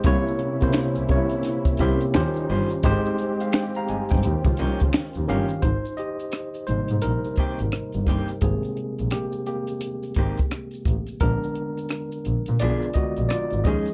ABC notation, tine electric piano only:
X:1
M:4/4
L:1/16
Q:"Swing 16ths" 1/4=86
K:Ab
V:1 name="Tine electric piano"
[C,B,=Ed]3 [C,B,Ec]3 [C,B,DEd]4 [C,B,EG]2 [_E,DFGc]4 | [A,EGc]3 [cf] [cg] [fb] [ea] [cg]2 z4 z [E,DGf]2 | [Ec]2 [Ge]4 [Ec]2 [EB]8 | [CA]4 [B,G]2 [B,G]8 z2 |
[=DB]6 z2 [F=d]2 [_Ge]2 [Fd]2 [Ae]2 |]
V:2 name="Tine electric piano" clef=bass
z16 | z16 | z6 [C,G,B,]2 z8 | [C,A,B,G]6 z8 z2 |
[=D,A,_C]6 z4 [D,A,C]2 z2 [F,A,_D]2 |]